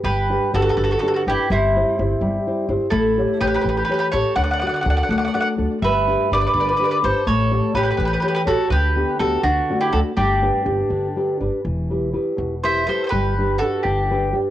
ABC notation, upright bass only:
X:1
M:6/8
L:1/16
Q:3/8=83
K:G
V:1 name="Upright bass" clef=bass
G,,,4 G,,,2 G,,,2 z2 G,,, z | G,,,4 G,,,2 G,,,2 z2 G,,, z | A,,,4 A,,,2 A,,,2 z2 A,,, z | D,,4 D,,2 D,,2 z2 D,, z |
G,,,4 G,,,2 G,,,2 z2 G,,, z | A,,,4 A,,,2 A,,,2 z2 A,,, z | D,,4 D,,2 D,,2 z2 D,, z | G,,,4 G,,,2 G,,,2 z2 G,,, z |
E,,,6 E,,,6 | G,,,6 G,,,6 |]